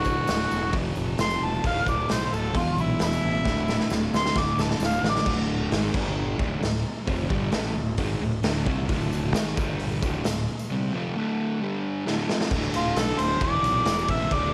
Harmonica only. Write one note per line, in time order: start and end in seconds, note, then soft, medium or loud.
0.00 0.72 F#4 loud
1.21 1.45 C6 loud
1.44 1.65 A5 loud
1.67 1.88 F5 loud
1.88 2.14 D5 medium
2.12 2.35 C5 medium
2.33 2.55 A4 loud
2.57 2.78 F4 loud
2.80 3.01 E4 medium
3.03 3.90 E4 loud
4.15 4.40 C6 loud
4.38 4.63 D6 loud
4.61 4.82 A5 medium
4.85 5.06 F5 loud
5.09 5.29 D5 loud
12.76 13.00 F4 loud
12.98 13.21 A4 medium
13.20 13.41 C5 loud
13.43 14.08 D5 loud
14.10 14.34 E5 medium
14.33 14.54 D5 loud